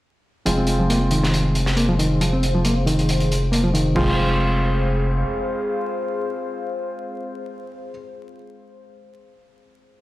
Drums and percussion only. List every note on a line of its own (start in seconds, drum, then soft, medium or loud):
0.46 closed hi-hat medium
0.67 closed hi-hat medium
0.90 closed hi-hat medium
1.11 closed hi-hat medium
1.23 snare soft
1.34 closed hi-hat medium
1.55 closed hi-hat medium
1.66 snare soft
1.77 closed hi-hat medium
1.99 closed hi-hat medium
2.21 closed hi-hat medium
2.43 closed hi-hat medium
2.65 closed hi-hat medium
2.87 closed hi-hat medium
2.99 closed hi-hat soft
3.09 closed hi-hat medium
3.20 closed hi-hat soft
3.32 closed hi-hat medium
3.53 closed hi-hat medium
3.75 closed hi-hat medium
3.96 kick loud
3.96 crash medium